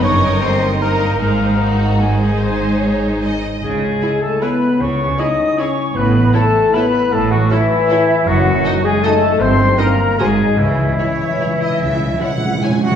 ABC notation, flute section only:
X:1
M:3/4
L:1/8
Q:1/4=152
K:C#m
V:1 name="Flute section"
c'2 ^b2 ^a2 | ^a4 g2- | g4- g z | g3 a b2 |
c'2 d'2 c'2 | b2 a2 b2 | a f e4 | f3 g a2 |
^b2 ^a2 g2 | e6- | e4 z2 |]